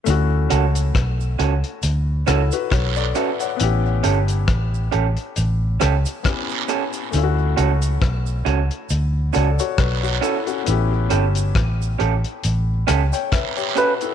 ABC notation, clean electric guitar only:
X:1
M:4/4
L:1/8
Q:"Swing 16ths" 1/4=68
K:D
V:1 name="Clean electric guitar"
z [CFA] z [CFA] z [CFA] z [CFA] | z [CGA] z [CGA] z [CGA] z [CGA] | z [CFA] z [CFA] z [CFA] z [CFA] | z [CGA] z [CGA] z [CGA] z [CGA] |]